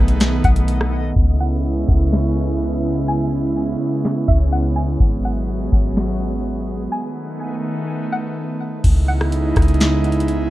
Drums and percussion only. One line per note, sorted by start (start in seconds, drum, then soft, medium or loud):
0.08 closed hi-hat medium
0.20 snare loud
0.20 closed hi-hat medium
0.44 kick medium
0.44 closed hi-hat medium
0.56 closed hi-hat medium
0.68 closed hi-hat medium
0.81 cross-stick medium
1.16 kick loud
1.88 kick loud
2.13 snare loud
4.05 snare loud
4.28 kick medium
5.00 kick loud
5.72 kick medium
5.97 snare loud
8.84 kick loud
8.84 closed hi-hat medium
8.84 crash loud
9.21 cross-stick loud
9.32 closed hi-hat medium
9.56 kick loud
9.56 cross-stick medium
9.56 closed hi-hat medium
9.62 closed hi-hat medium
9.68 closed hi-hat soft
9.74 closed hi-hat soft
9.80 snare loud
9.80 closed hi-hat medium
10.04 closed hi-hat soft
10.12 closed hi-hat medium
10.20 closed hi-hat medium
10.28 closed hi-hat medium